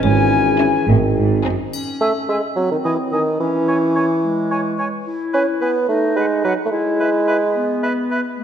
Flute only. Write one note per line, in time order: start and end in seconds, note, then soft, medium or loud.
0.04 0.87 G#5 medium
2.00 2.06 G#5 soft
2.29 2.35 G#5 soft
2.84 2.90 G#5 soft
3.13 3.19 G#5 soft
3.68 3.74 G#5 soft
3.96 4.02 G#5 soft
4.51 4.57 G#5 soft
4.79 4.85 G#5 soft
5.33 5.39 G#5 soft
5.62 5.68 G#5 soft
6.19 6.25 F#5 soft
6.46 6.52 F#5 soft
7.00 7.06 E5 soft
7.27 7.33 E5 soft
7.82 7.88 E5 medium
8.11 8.17 E5 soft